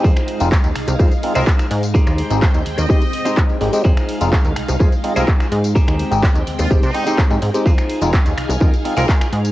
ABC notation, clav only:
X:1
M:4/4
L:1/16
Q:1/4=126
K:Fm
V:1 name="Clav"
z3 [A,CEF] z4 [A,CEF] z [A,CEF] [A,CEF] z4 | z3 [A,CEG] z4 [A,CEG] z2 [A,CEg]3 [A,CEG] [A,CEG] | z3 [A,CEF] z4 [A,CEF] z [A,CEF] [A,CEF] z4 | z3 [A,CEG] z4 [A,CEG] z [A,CEG] [A,CEG] z [A,CEG] z [A,CEG] |
z3 [A,CEF] z4 [A,CEF] z [A,CEF] [A,CEF] z4 |]